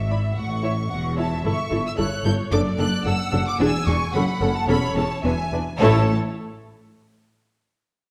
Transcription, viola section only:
0, 0, Header, 1, 2, 480
1, 0, Start_track
1, 0, Key_signature, 3, "major"
1, 0, Tempo, 539084
1, 330, Time_signature, 2, 2, 24, 8
1, 4172, Tempo, 560748
1, 7096, End_track
2, 0, Start_track
2, 0, Title_t, "Viola section"
2, 0, Program_c, 0, 48
2, 90, Note_on_c, 0, 64, 49
2, 90, Note_on_c, 0, 74, 52
2, 161, Note_off_c, 0, 64, 0
2, 161, Note_off_c, 0, 74, 0
2, 560, Note_on_c, 0, 64, 58
2, 564, Note_on_c, 0, 73, 55
2, 631, Note_off_c, 0, 64, 0
2, 635, Note_off_c, 0, 73, 0
2, 1046, Note_on_c, 0, 64, 64
2, 1047, Note_on_c, 0, 73, 64
2, 1117, Note_off_c, 0, 64, 0
2, 1119, Note_off_c, 0, 73, 0
2, 1284, Note_on_c, 0, 64, 81
2, 1286, Note_on_c, 0, 69, 75
2, 1356, Note_off_c, 0, 64, 0
2, 1358, Note_off_c, 0, 69, 0
2, 1523, Note_on_c, 0, 64, 69
2, 1526, Note_on_c, 0, 69, 68
2, 1595, Note_off_c, 0, 64, 0
2, 1597, Note_off_c, 0, 69, 0
2, 1761, Note_on_c, 0, 69, 70
2, 1763, Note_on_c, 0, 64, 70
2, 1833, Note_off_c, 0, 69, 0
2, 1834, Note_off_c, 0, 64, 0
2, 2002, Note_on_c, 0, 64, 66
2, 2002, Note_on_c, 0, 69, 70
2, 2073, Note_off_c, 0, 64, 0
2, 2073, Note_off_c, 0, 69, 0
2, 2247, Note_on_c, 0, 62, 82
2, 2247, Note_on_c, 0, 69, 91
2, 2318, Note_off_c, 0, 62, 0
2, 2318, Note_off_c, 0, 69, 0
2, 2479, Note_on_c, 0, 69, 77
2, 2485, Note_on_c, 0, 62, 81
2, 2550, Note_off_c, 0, 69, 0
2, 2556, Note_off_c, 0, 62, 0
2, 2726, Note_on_c, 0, 69, 73
2, 2728, Note_on_c, 0, 62, 74
2, 2798, Note_off_c, 0, 69, 0
2, 2799, Note_off_c, 0, 62, 0
2, 2960, Note_on_c, 0, 69, 76
2, 2963, Note_on_c, 0, 62, 77
2, 3031, Note_off_c, 0, 69, 0
2, 3034, Note_off_c, 0, 62, 0
2, 3211, Note_on_c, 0, 62, 101
2, 3212, Note_on_c, 0, 68, 92
2, 3282, Note_off_c, 0, 62, 0
2, 3284, Note_off_c, 0, 68, 0
2, 3448, Note_on_c, 0, 62, 81
2, 3451, Note_on_c, 0, 68, 77
2, 3519, Note_off_c, 0, 62, 0
2, 3522, Note_off_c, 0, 68, 0
2, 3694, Note_on_c, 0, 69, 79
2, 3695, Note_on_c, 0, 61, 80
2, 3765, Note_off_c, 0, 69, 0
2, 3767, Note_off_c, 0, 61, 0
2, 3931, Note_on_c, 0, 69, 80
2, 3933, Note_on_c, 0, 61, 75
2, 4003, Note_off_c, 0, 69, 0
2, 4005, Note_off_c, 0, 61, 0
2, 4175, Note_on_c, 0, 69, 91
2, 4178, Note_on_c, 0, 61, 94
2, 4243, Note_off_c, 0, 69, 0
2, 4246, Note_off_c, 0, 61, 0
2, 4414, Note_on_c, 0, 61, 70
2, 4415, Note_on_c, 0, 69, 74
2, 4482, Note_off_c, 0, 61, 0
2, 4483, Note_off_c, 0, 69, 0
2, 4653, Note_on_c, 0, 71, 70
2, 4654, Note_on_c, 0, 62, 61
2, 4721, Note_off_c, 0, 71, 0
2, 4722, Note_off_c, 0, 62, 0
2, 4893, Note_on_c, 0, 71, 64
2, 4896, Note_on_c, 0, 62, 69
2, 4962, Note_off_c, 0, 71, 0
2, 4965, Note_off_c, 0, 62, 0
2, 5127, Note_on_c, 0, 64, 102
2, 5128, Note_on_c, 0, 57, 100
2, 5398, Note_off_c, 0, 57, 0
2, 5398, Note_off_c, 0, 64, 0
2, 7096, End_track
0, 0, End_of_file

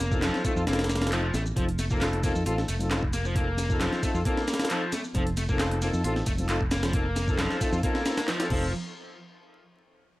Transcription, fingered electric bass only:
0, 0, Header, 1, 2, 480
1, 0, Start_track
1, 0, Tempo, 447761
1, 1679, Time_signature, 4, 2, 24, 8
1, 10934, End_track
2, 0, Start_track
2, 0, Title_t, "Fingered electric bass"
2, 0, Program_c, 0, 33
2, 0, Note_on_c, 0, 29, 87
2, 313, Note_off_c, 0, 29, 0
2, 602, Note_on_c, 0, 41, 94
2, 689, Note_off_c, 0, 41, 0
2, 716, Note_on_c, 0, 29, 89
2, 1394, Note_off_c, 0, 29, 0
2, 1434, Note_on_c, 0, 33, 101
2, 1622, Note_off_c, 0, 33, 0
2, 1677, Note_on_c, 0, 29, 99
2, 2475, Note_off_c, 0, 29, 0
2, 2522, Note_on_c, 0, 41, 93
2, 2609, Note_off_c, 0, 41, 0
2, 2636, Note_on_c, 0, 33, 99
2, 2822, Note_off_c, 0, 33, 0
2, 2876, Note_on_c, 0, 29, 87
2, 4155, Note_off_c, 0, 29, 0
2, 4441, Note_on_c, 0, 41, 96
2, 4529, Note_off_c, 0, 41, 0
2, 5518, Note_on_c, 0, 29, 100
2, 6316, Note_off_c, 0, 29, 0
2, 6362, Note_on_c, 0, 41, 96
2, 6449, Note_off_c, 0, 41, 0
2, 6472, Note_on_c, 0, 33, 101
2, 6660, Note_off_c, 0, 33, 0
2, 6717, Note_on_c, 0, 29, 90
2, 7995, Note_off_c, 0, 29, 0
2, 8280, Note_on_c, 0, 41, 97
2, 8369, Note_off_c, 0, 41, 0
2, 9115, Note_on_c, 0, 29, 103
2, 9340, Note_off_c, 0, 29, 0
2, 10934, End_track
0, 0, End_of_file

